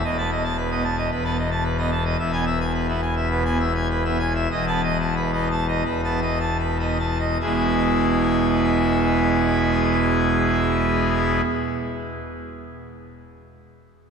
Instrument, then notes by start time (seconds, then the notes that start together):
pipe organ
0.04 E1 E2 D#5
0.18 B3 A5
0.30 D#5
0.44 A5
0.57 B4
0.71 B3 D#5
0.84 A5
0.98 D#5
1.11 E1 E2 B4
1.24 B3 A5
1.37 D#5
1.51 A5
1.65 B4
1.78 B3 D#5
1.91 A5
2.05 D#5
2.19 E1 E2 E5
2.32 B3 G#5
2.46 E5
2.61 G#5
2.74 B4
2.89 B3 E5
3.02 G#5
3.16 E5
3.30 B2 B4
3.45 B3 G#5
3.60 E5
3.75 G#5
3.90 B4
4.05 B3 E5
4.19 G#5
4.35 E5
4.51 E1 E2 D#5
4.67 B3 A5
4.83 D#5
5.00 A5
5.16 B4
5.33 B3 D#5
5.51 A5
5.68 D#5
5.85 E1 E2 B4
6.04 B3 A5
6.22 D#5
6.40 A5
6.59 B4
6.79 B3 D#5
6.99 A5
7.19 D#5
7.41 E1 E2 B2 G#3 B3 E4 G#4